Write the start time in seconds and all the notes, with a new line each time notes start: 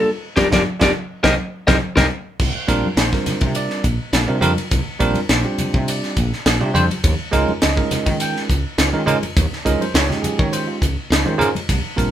0.36 G1 D4 F4 G4 A#4 D5, kick, snare, high conga
0.51 G1 D4 F4 G4 A#4 D5, kick, snare, high conga
0.79 G1 D4 F4 G4 A#4 D5, kick, snare, high conga
1.23 C2 C4 D#4 G4 A#4 C5 D#5, kick, snare, high conga
1.67 C2 C4 D#4 G4 A#4 C5 D#5, kick, snare, high conga
1.97 C2 C4 D#4 G4 A#4 C5 D#5, kick, snare, high conga
2.39 C2, kick, crash
2.68 A#1 G3 C4 D4 F4 A#4, kick, snare, hi-hat pedal, ride
2.84 muted fretless electric bass stroke, high conga
2.96 A#1 F4 A#4 C5, snare, hi-hat pedal, ride
3.12 G3 C4 D4 F4 A#4, kick, snare
3.26 muted fretless electric bass stroke, snare, hi-hat pedal, ride, high conga, low conga
3.41 C3, kick, ride
3.55 D5, hi-hat pedal, ride
3.70 snare
3.84 A#1, kick, hi-hat pedal, ride
4.13 A#1, snare, hi-hat pedal, ride
4.28 C3 G3 C4 D4 F4 A#4
4.41 F2 G3 C4 D4 F4 A#4, hi-hat pedal, ride, low conga
4.57 F4 A#4, muted fretless electric bass stroke, ride, high conga
4.71 C2, kick, hi-hat pedal, ride
4.85 muted fretless electric bass stroke
4.99 A#1 G3 C4 D4 F4 A#4, kick, hi-hat pedal, ride
5.15 muted fretless electric bass stroke, ride, high conga
5.28 A#1 F4 A#4 C5, snare, hi-hat pedal, ride
5.44 G3 C4 D4 F4 G4
5.58 muted fretless electric bass stroke, hi-hat pedal, ride, high conga, low conga
5.74 C3, kick
5.88 D5, hi-hat pedal, ride
6.03 snare
6.17 A#1, kick, hi-hat pedal, ride
6.33 snare
6.46 A#1, snare, hi-hat pedal, ride
6.60 C3 G3 C4 D4 F4 G4
6.74 F2 G3 C4 D4 F4 C5, hi-hat pedal, ride, low conga
6.90 F4 C5, muted fretless electric bass stroke, ride, high conga
7.04 D#2, kick, hi-hat pedal, ride
7.19 muted fretless electric bass stroke
7.31 C#2 G#3 C#4 D#4 F4 A#4, kick, hi-hat pedal, ride
7.49 muted fretless electric bass stroke, high conga
7.61 C#2 F4 C#5 D#5, snare, hi-hat pedal, ride
7.76 G#3 C#4 D#4 F4 A#4, kick
7.91 muted fretless electric bass stroke, snare, hi-hat pedal, ride, high conga, low conga
8.06 D#3, kick, ride
8.20 G5, hi-hat pedal, ride
8.36 snare
8.49 C#2, kick, hi-hat pedal, ride
8.78 C#2, snare, hi-hat pedal, ride
8.93 D#3 G#3 C#4 D#4 F4 A#4
9.06 G#2 G#3 C#4 D#4 F4 A#4, hi-hat pedal, ride, low conga
9.22 F4 A#4, muted fretless electric bass stroke, ride, high conga
9.36 D#2, kick, hi-hat pedal, ride
9.50 muted fretless electric bass stroke, snare
9.65 C#2 G#3 C#4 D#4 F4 A#4 D#5, kick, hi-hat pedal, ride
9.80 C5, muted fretless electric bass stroke, ride, high conga
9.94 C#2 F4 G4 C#5, snare, hi-hat pedal, ride
10.09 G#3 C#4 D#4 F4 G4, snare, low conga
10.22 G#4, muted fretless electric bass stroke, hi-hat pedal, ride, high conga, low conga
10.39 D#3 C#5, kick
10.53 C5, hi-hat pedal, ride
10.67 F4
10.81 C#2, kick, hi-hat pedal, ride
11.10 C#2, snare, hi-hat pedal, ride
11.25 D#3 G#3 C#4 D#4 F4 C5, high conga
11.38 G#2 G#3 C#4 D#4 F4 A#4, hi-hat pedal, ride, low conga
11.54 F4 C#5, muted fretless electric bass stroke, ride, high conga
11.69 C2, kick, hi-hat pedal, ride
11.85 muted fretless electric bass stroke
11.96 A#1 G3 C4 D4 F4 A#4, kick, hi-hat pedal, ride